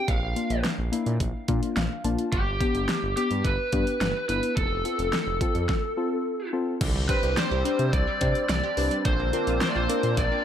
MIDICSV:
0, 0, Header, 1, 7, 480
1, 0, Start_track
1, 0, Tempo, 560748
1, 69, Time_signature, 4, 2, 24, 8
1, 8940, End_track
2, 0, Start_track
2, 0, Title_t, "Lead electric guitar"
2, 0, Program_c, 0, 29
2, 69, Note_on_c, 0, 77, 82
2, 516, Note_off_c, 0, 77, 0
2, 1993, Note_on_c, 0, 67, 92
2, 2677, Note_off_c, 0, 67, 0
2, 2709, Note_on_c, 0, 67, 87
2, 2948, Note_on_c, 0, 71, 101
2, 2957, Note_off_c, 0, 67, 0
2, 3658, Note_off_c, 0, 71, 0
2, 3668, Note_on_c, 0, 71, 99
2, 3903, Note_off_c, 0, 71, 0
2, 3907, Note_on_c, 0, 69, 87
2, 5554, Note_off_c, 0, 69, 0
2, 6071, Note_on_c, 0, 71, 80
2, 6310, Note_off_c, 0, 71, 0
2, 6314, Note_on_c, 0, 72, 90
2, 6789, Note_on_c, 0, 74, 93
2, 6806, Note_off_c, 0, 72, 0
2, 7236, Note_off_c, 0, 74, 0
2, 7271, Note_on_c, 0, 74, 94
2, 7717, Note_off_c, 0, 74, 0
2, 7754, Note_on_c, 0, 72, 101
2, 8225, Note_off_c, 0, 72, 0
2, 8235, Note_on_c, 0, 72, 96
2, 8291, Note_on_c, 0, 74, 82
2, 8294, Note_off_c, 0, 72, 0
2, 8350, Note_off_c, 0, 74, 0
2, 8356, Note_on_c, 0, 72, 97
2, 8715, Note_on_c, 0, 74, 101
2, 8723, Note_off_c, 0, 72, 0
2, 8940, Note_off_c, 0, 74, 0
2, 8940, End_track
3, 0, Start_track
3, 0, Title_t, "Synth keys"
3, 0, Program_c, 1, 88
3, 307, Note_on_c, 1, 62, 66
3, 307, Note_on_c, 1, 65, 79
3, 308, Note_on_c, 1, 58, 72
3, 489, Note_off_c, 1, 58, 0
3, 489, Note_off_c, 1, 62, 0
3, 489, Note_off_c, 1, 65, 0
3, 786, Note_on_c, 1, 62, 77
3, 786, Note_on_c, 1, 64, 96
3, 787, Note_on_c, 1, 58, 86
3, 968, Note_off_c, 1, 62, 0
3, 968, Note_off_c, 1, 64, 0
3, 969, Note_off_c, 1, 58, 0
3, 1269, Note_on_c, 1, 62, 83
3, 1270, Note_on_c, 1, 58, 87
3, 1271, Note_on_c, 1, 65, 98
3, 1450, Note_off_c, 1, 58, 0
3, 1450, Note_off_c, 1, 62, 0
3, 1451, Note_off_c, 1, 65, 0
3, 1509, Note_on_c, 1, 77, 72
3, 1733, Note_off_c, 1, 77, 0
3, 1749, Note_on_c, 1, 65, 96
3, 1749, Note_on_c, 1, 81, 70
3, 1750, Note_on_c, 1, 58, 88
3, 1750, Note_on_c, 1, 62, 81
3, 1930, Note_off_c, 1, 58, 0
3, 1930, Note_off_c, 1, 62, 0
3, 1930, Note_off_c, 1, 65, 0
3, 1973, Note_off_c, 1, 81, 0
3, 2231, Note_on_c, 1, 67, 81
3, 2232, Note_on_c, 1, 59, 74
3, 2232, Note_on_c, 1, 62, 65
3, 2410, Note_off_c, 1, 67, 0
3, 2411, Note_off_c, 1, 59, 0
3, 2411, Note_off_c, 1, 62, 0
3, 2711, Note_on_c, 1, 59, 74
3, 2711, Note_on_c, 1, 67, 76
3, 2712, Note_on_c, 1, 62, 65
3, 2891, Note_off_c, 1, 59, 0
3, 2891, Note_off_c, 1, 62, 0
3, 2891, Note_off_c, 1, 67, 0
3, 3191, Note_on_c, 1, 67, 82
3, 3192, Note_on_c, 1, 59, 75
3, 3193, Note_on_c, 1, 62, 70
3, 3371, Note_off_c, 1, 59, 0
3, 3371, Note_off_c, 1, 62, 0
3, 3371, Note_off_c, 1, 67, 0
3, 3671, Note_on_c, 1, 59, 75
3, 3671, Note_on_c, 1, 62, 68
3, 3671, Note_on_c, 1, 64, 83
3, 3851, Note_off_c, 1, 59, 0
3, 3851, Note_off_c, 1, 62, 0
3, 3851, Note_off_c, 1, 64, 0
3, 4151, Note_on_c, 1, 60, 75
3, 4151, Note_on_c, 1, 69, 83
3, 4152, Note_on_c, 1, 65, 68
3, 4331, Note_off_c, 1, 60, 0
3, 4331, Note_off_c, 1, 65, 0
3, 4331, Note_off_c, 1, 69, 0
3, 4632, Note_on_c, 1, 60, 87
3, 4632, Note_on_c, 1, 65, 78
3, 4632, Note_on_c, 1, 69, 92
3, 4811, Note_off_c, 1, 60, 0
3, 4811, Note_off_c, 1, 65, 0
3, 4811, Note_off_c, 1, 69, 0
3, 5110, Note_on_c, 1, 69, 97
3, 5111, Note_on_c, 1, 60, 85
3, 5111, Note_on_c, 1, 65, 79
3, 5290, Note_off_c, 1, 69, 0
3, 5291, Note_off_c, 1, 60, 0
3, 5291, Note_off_c, 1, 65, 0
3, 5588, Note_on_c, 1, 65, 80
3, 5589, Note_on_c, 1, 60, 85
3, 5589, Note_on_c, 1, 69, 94
3, 5769, Note_off_c, 1, 65, 0
3, 5770, Note_off_c, 1, 60, 0
3, 5770, Note_off_c, 1, 69, 0
3, 6066, Note_on_c, 1, 62, 76
3, 6066, Note_on_c, 1, 67, 70
3, 6066, Note_on_c, 1, 72, 86
3, 6248, Note_off_c, 1, 62, 0
3, 6248, Note_off_c, 1, 67, 0
3, 6248, Note_off_c, 1, 72, 0
3, 6547, Note_on_c, 1, 62, 74
3, 6547, Note_on_c, 1, 72, 82
3, 6548, Note_on_c, 1, 67, 70
3, 6729, Note_off_c, 1, 62, 0
3, 6729, Note_off_c, 1, 67, 0
3, 6729, Note_off_c, 1, 72, 0
3, 7027, Note_on_c, 1, 62, 78
3, 7027, Note_on_c, 1, 67, 70
3, 7028, Note_on_c, 1, 72, 84
3, 7209, Note_off_c, 1, 62, 0
3, 7209, Note_off_c, 1, 67, 0
3, 7209, Note_off_c, 1, 72, 0
3, 7510, Note_on_c, 1, 62, 78
3, 7510, Note_on_c, 1, 67, 73
3, 7510, Note_on_c, 1, 71, 86
3, 7690, Note_off_c, 1, 62, 0
3, 7690, Note_off_c, 1, 67, 0
3, 7690, Note_off_c, 1, 71, 0
3, 7988, Note_on_c, 1, 62, 79
3, 7988, Note_on_c, 1, 65, 71
3, 7988, Note_on_c, 1, 70, 87
3, 8169, Note_off_c, 1, 62, 0
3, 8169, Note_off_c, 1, 65, 0
3, 8169, Note_off_c, 1, 70, 0
3, 8467, Note_on_c, 1, 62, 79
3, 8467, Note_on_c, 1, 65, 70
3, 8467, Note_on_c, 1, 70, 86
3, 8649, Note_off_c, 1, 62, 0
3, 8649, Note_off_c, 1, 65, 0
3, 8649, Note_off_c, 1, 70, 0
3, 8940, End_track
4, 0, Start_track
4, 0, Title_t, "Analog synth pad"
4, 0, Program_c, 2, 89
4, 5830, Note_on_c, 2, 55, 90
4, 5830, Note_on_c, 2, 60, 81
4, 5830, Note_on_c, 2, 62, 98
4, 7731, Note_off_c, 2, 55, 0
4, 7731, Note_off_c, 2, 60, 0
4, 7751, Note_on_c, 2, 58, 91
4, 7752, Note_on_c, 2, 60, 78
4, 8940, Note_off_c, 2, 58, 0
4, 8940, Note_off_c, 2, 60, 0
4, 8940, Note_off_c, 2, 62, 0
4, 8940, End_track
5, 0, Start_track
5, 0, Title_t, "Synth pluck"
5, 0, Program_c, 3, 84
5, 5830, Note_on_c, 3, 50, 95
5, 5926, Note_off_c, 3, 50, 0
5, 5950, Note_on_c, 3, 55, 73
5, 6047, Note_off_c, 3, 55, 0
5, 6070, Note_on_c, 3, 60, 84
5, 6167, Note_off_c, 3, 60, 0
5, 6191, Note_on_c, 3, 67, 81
5, 6287, Note_off_c, 3, 67, 0
5, 6311, Note_on_c, 3, 74, 92
5, 6407, Note_off_c, 3, 74, 0
5, 6431, Note_on_c, 3, 67, 78
5, 6527, Note_off_c, 3, 67, 0
5, 6550, Note_on_c, 3, 60, 81
5, 6647, Note_off_c, 3, 60, 0
5, 6910, Note_on_c, 3, 55, 77
5, 7007, Note_off_c, 3, 55, 0
5, 7030, Note_on_c, 3, 60, 83
5, 7127, Note_off_c, 3, 60, 0
5, 7271, Note_on_c, 3, 74, 91
5, 7367, Note_off_c, 3, 74, 0
5, 7390, Note_on_c, 3, 67, 79
5, 7487, Note_off_c, 3, 67, 0
5, 7510, Note_on_c, 3, 60, 84
5, 7606, Note_off_c, 3, 60, 0
5, 7629, Note_on_c, 3, 55, 77
5, 7726, Note_off_c, 3, 55, 0
5, 7750, Note_on_c, 3, 50, 97
5, 7846, Note_off_c, 3, 50, 0
5, 7871, Note_on_c, 3, 58, 77
5, 7967, Note_off_c, 3, 58, 0
5, 7990, Note_on_c, 3, 60, 87
5, 8087, Note_off_c, 3, 60, 0
5, 8111, Note_on_c, 3, 65, 79
5, 8207, Note_off_c, 3, 65, 0
5, 8231, Note_on_c, 3, 74, 93
5, 8327, Note_off_c, 3, 74, 0
5, 8350, Note_on_c, 3, 65, 80
5, 8447, Note_off_c, 3, 65, 0
5, 8471, Note_on_c, 3, 60, 78
5, 8567, Note_off_c, 3, 60, 0
5, 8832, Note_on_c, 3, 58, 76
5, 8928, Note_off_c, 3, 58, 0
5, 8940, End_track
6, 0, Start_track
6, 0, Title_t, "Analog synth bass"
6, 0, Program_c, 4, 38
6, 70, Note_on_c, 4, 34, 114
6, 174, Note_off_c, 4, 34, 0
6, 192, Note_on_c, 4, 34, 101
6, 296, Note_off_c, 4, 34, 0
6, 430, Note_on_c, 4, 34, 97
6, 534, Note_off_c, 4, 34, 0
6, 670, Note_on_c, 4, 34, 91
6, 774, Note_off_c, 4, 34, 0
6, 910, Note_on_c, 4, 46, 100
6, 1014, Note_off_c, 4, 46, 0
6, 1029, Note_on_c, 4, 34, 105
6, 1134, Note_off_c, 4, 34, 0
6, 1271, Note_on_c, 4, 46, 110
6, 1375, Note_off_c, 4, 46, 0
6, 1510, Note_on_c, 4, 34, 91
6, 1614, Note_off_c, 4, 34, 0
6, 1749, Note_on_c, 4, 34, 89
6, 1853, Note_off_c, 4, 34, 0
6, 1991, Note_on_c, 4, 31, 105
6, 2094, Note_off_c, 4, 31, 0
6, 2109, Note_on_c, 4, 31, 97
6, 2214, Note_off_c, 4, 31, 0
6, 2349, Note_on_c, 4, 31, 103
6, 2454, Note_off_c, 4, 31, 0
6, 2590, Note_on_c, 4, 31, 90
6, 2694, Note_off_c, 4, 31, 0
6, 2831, Note_on_c, 4, 43, 91
6, 2935, Note_off_c, 4, 43, 0
6, 2950, Note_on_c, 4, 31, 101
6, 3054, Note_off_c, 4, 31, 0
6, 3192, Note_on_c, 4, 43, 98
6, 3295, Note_off_c, 4, 43, 0
6, 3430, Note_on_c, 4, 31, 95
6, 3534, Note_off_c, 4, 31, 0
6, 3670, Note_on_c, 4, 31, 92
6, 3774, Note_off_c, 4, 31, 0
6, 3911, Note_on_c, 4, 29, 103
6, 4015, Note_off_c, 4, 29, 0
6, 4030, Note_on_c, 4, 29, 93
6, 4134, Note_off_c, 4, 29, 0
6, 4270, Note_on_c, 4, 29, 97
6, 4374, Note_off_c, 4, 29, 0
6, 4509, Note_on_c, 4, 29, 97
6, 4614, Note_off_c, 4, 29, 0
6, 4750, Note_on_c, 4, 41, 92
6, 4854, Note_off_c, 4, 41, 0
6, 5830, Note_on_c, 4, 36, 113
6, 5934, Note_off_c, 4, 36, 0
6, 5949, Note_on_c, 4, 36, 104
6, 6053, Note_off_c, 4, 36, 0
6, 6190, Note_on_c, 4, 36, 101
6, 6294, Note_off_c, 4, 36, 0
6, 6429, Note_on_c, 4, 36, 101
6, 6534, Note_off_c, 4, 36, 0
6, 6670, Note_on_c, 4, 48, 96
6, 6774, Note_off_c, 4, 48, 0
6, 6790, Note_on_c, 4, 36, 116
6, 6894, Note_off_c, 4, 36, 0
6, 7030, Note_on_c, 4, 48, 109
6, 7134, Note_off_c, 4, 48, 0
6, 7271, Note_on_c, 4, 36, 97
6, 7375, Note_off_c, 4, 36, 0
6, 7510, Note_on_c, 4, 36, 89
6, 7614, Note_off_c, 4, 36, 0
6, 7749, Note_on_c, 4, 34, 114
6, 7854, Note_off_c, 4, 34, 0
6, 7870, Note_on_c, 4, 34, 108
6, 7974, Note_off_c, 4, 34, 0
6, 8109, Note_on_c, 4, 34, 101
6, 8214, Note_off_c, 4, 34, 0
6, 8350, Note_on_c, 4, 34, 95
6, 8454, Note_off_c, 4, 34, 0
6, 8589, Note_on_c, 4, 46, 106
6, 8694, Note_off_c, 4, 46, 0
6, 8709, Note_on_c, 4, 34, 106
6, 8814, Note_off_c, 4, 34, 0
6, 8940, End_track
7, 0, Start_track
7, 0, Title_t, "Drums"
7, 70, Note_on_c, 9, 36, 110
7, 70, Note_on_c, 9, 42, 70
7, 156, Note_off_c, 9, 36, 0
7, 156, Note_off_c, 9, 42, 0
7, 312, Note_on_c, 9, 42, 65
7, 397, Note_off_c, 9, 42, 0
7, 431, Note_on_c, 9, 42, 46
7, 516, Note_off_c, 9, 42, 0
7, 550, Note_on_c, 9, 38, 109
7, 552, Note_on_c, 9, 42, 67
7, 636, Note_off_c, 9, 38, 0
7, 637, Note_off_c, 9, 42, 0
7, 794, Note_on_c, 9, 42, 83
7, 880, Note_off_c, 9, 42, 0
7, 911, Note_on_c, 9, 42, 47
7, 997, Note_off_c, 9, 42, 0
7, 1030, Note_on_c, 9, 36, 88
7, 1031, Note_on_c, 9, 42, 65
7, 1115, Note_off_c, 9, 36, 0
7, 1117, Note_off_c, 9, 42, 0
7, 1268, Note_on_c, 9, 42, 70
7, 1271, Note_on_c, 9, 36, 86
7, 1354, Note_off_c, 9, 42, 0
7, 1357, Note_off_c, 9, 36, 0
7, 1393, Note_on_c, 9, 42, 55
7, 1478, Note_off_c, 9, 42, 0
7, 1512, Note_on_c, 9, 38, 106
7, 1512, Note_on_c, 9, 42, 78
7, 1597, Note_off_c, 9, 38, 0
7, 1597, Note_off_c, 9, 42, 0
7, 1750, Note_on_c, 9, 42, 65
7, 1836, Note_off_c, 9, 42, 0
7, 1871, Note_on_c, 9, 42, 53
7, 1956, Note_off_c, 9, 42, 0
7, 1990, Note_on_c, 9, 36, 113
7, 1990, Note_on_c, 9, 42, 68
7, 2076, Note_off_c, 9, 36, 0
7, 2076, Note_off_c, 9, 42, 0
7, 2230, Note_on_c, 9, 36, 97
7, 2232, Note_on_c, 9, 42, 67
7, 2316, Note_off_c, 9, 36, 0
7, 2318, Note_off_c, 9, 42, 0
7, 2351, Note_on_c, 9, 42, 48
7, 2437, Note_off_c, 9, 42, 0
7, 2471, Note_on_c, 9, 38, 107
7, 2472, Note_on_c, 9, 42, 66
7, 2556, Note_off_c, 9, 38, 0
7, 2558, Note_off_c, 9, 42, 0
7, 2713, Note_on_c, 9, 42, 79
7, 2799, Note_off_c, 9, 42, 0
7, 2831, Note_on_c, 9, 42, 46
7, 2916, Note_off_c, 9, 42, 0
7, 2950, Note_on_c, 9, 36, 88
7, 2952, Note_on_c, 9, 42, 69
7, 3035, Note_off_c, 9, 36, 0
7, 3037, Note_off_c, 9, 42, 0
7, 3188, Note_on_c, 9, 42, 70
7, 3192, Note_on_c, 9, 36, 90
7, 3274, Note_off_c, 9, 42, 0
7, 3277, Note_off_c, 9, 36, 0
7, 3313, Note_on_c, 9, 42, 55
7, 3399, Note_off_c, 9, 42, 0
7, 3433, Note_on_c, 9, 38, 106
7, 3433, Note_on_c, 9, 42, 80
7, 3519, Note_off_c, 9, 38, 0
7, 3519, Note_off_c, 9, 42, 0
7, 3672, Note_on_c, 9, 42, 66
7, 3757, Note_off_c, 9, 42, 0
7, 3792, Note_on_c, 9, 42, 54
7, 3878, Note_off_c, 9, 42, 0
7, 3911, Note_on_c, 9, 36, 114
7, 3912, Note_on_c, 9, 42, 69
7, 3997, Note_off_c, 9, 36, 0
7, 3998, Note_off_c, 9, 42, 0
7, 4153, Note_on_c, 9, 42, 68
7, 4238, Note_off_c, 9, 42, 0
7, 4272, Note_on_c, 9, 42, 49
7, 4357, Note_off_c, 9, 42, 0
7, 4390, Note_on_c, 9, 38, 110
7, 4392, Note_on_c, 9, 42, 69
7, 4476, Note_off_c, 9, 38, 0
7, 4477, Note_off_c, 9, 42, 0
7, 4630, Note_on_c, 9, 36, 93
7, 4632, Note_on_c, 9, 42, 82
7, 4716, Note_off_c, 9, 36, 0
7, 4718, Note_off_c, 9, 42, 0
7, 4750, Note_on_c, 9, 42, 46
7, 4836, Note_off_c, 9, 42, 0
7, 4869, Note_on_c, 9, 38, 85
7, 4870, Note_on_c, 9, 36, 108
7, 4955, Note_off_c, 9, 36, 0
7, 4955, Note_off_c, 9, 38, 0
7, 5829, Note_on_c, 9, 42, 73
7, 5829, Note_on_c, 9, 49, 100
7, 5830, Note_on_c, 9, 36, 117
7, 5915, Note_off_c, 9, 36, 0
7, 5915, Note_off_c, 9, 42, 0
7, 5915, Note_off_c, 9, 49, 0
7, 6069, Note_on_c, 9, 36, 102
7, 6070, Note_on_c, 9, 42, 69
7, 6155, Note_off_c, 9, 36, 0
7, 6155, Note_off_c, 9, 42, 0
7, 6189, Note_on_c, 9, 42, 50
7, 6275, Note_off_c, 9, 42, 0
7, 6310, Note_on_c, 9, 38, 119
7, 6311, Note_on_c, 9, 42, 72
7, 6395, Note_off_c, 9, 38, 0
7, 6397, Note_off_c, 9, 42, 0
7, 6552, Note_on_c, 9, 42, 87
7, 6638, Note_off_c, 9, 42, 0
7, 6669, Note_on_c, 9, 42, 48
7, 6755, Note_off_c, 9, 42, 0
7, 6789, Note_on_c, 9, 36, 96
7, 6790, Note_on_c, 9, 42, 69
7, 6875, Note_off_c, 9, 36, 0
7, 6875, Note_off_c, 9, 42, 0
7, 7027, Note_on_c, 9, 42, 73
7, 7031, Note_on_c, 9, 36, 93
7, 7113, Note_off_c, 9, 42, 0
7, 7116, Note_off_c, 9, 36, 0
7, 7150, Note_on_c, 9, 42, 56
7, 7236, Note_off_c, 9, 42, 0
7, 7270, Note_on_c, 9, 38, 118
7, 7270, Note_on_c, 9, 42, 86
7, 7355, Note_off_c, 9, 38, 0
7, 7355, Note_off_c, 9, 42, 0
7, 7508, Note_on_c, 9, 46, 66
7, 7594, Note_off_c, 9, 46, 0
7, 7628, Note_on_c, 9, 42, 58
7, 7714, Note_off_c, 9, 42, 0
7, 7747, Note_on_c, 9, 42, 71
7, 7749, Note_on_c, 9, 36, 121
7, 7833, Note_off_c, 9, 42, 0
7, 7835, Note_off_c, 9, 36, 0
7, 7988, Note_on_c, 9, 42, 69
7, 8074, Note_off_c, 9, 42, 0
7, 8108, Note_on_c, 9, 42, 50
7, 8194, Note_off_c, 9, 42, 0
7, 8228, Note_on_c, 9, 38, 119
7, 8229, Note_on_c, 9, 42, 75
7, 8313, Note_off_c, 9, 38, 0
7, 8314, Note_off_c, 9, 42, 0
7, 8470, Note_on_c, 9, 42, 87
7, 8556, Note_off_c, 9, 42, 0
7, 8588, Note_on_c, 9, 42, 47
7, 8674, Note_off_c, 9, 42, 0
7, 8708, Note_on_c, 9, 42, 75
7, 8709, Note_on_c, 9, 36, 96
7, 8794, Note_off_c, 9, 42, 0
7, 8795, Note_off_c, 9, 36, 0
7, 8940, End_track
0, 0, End_of_file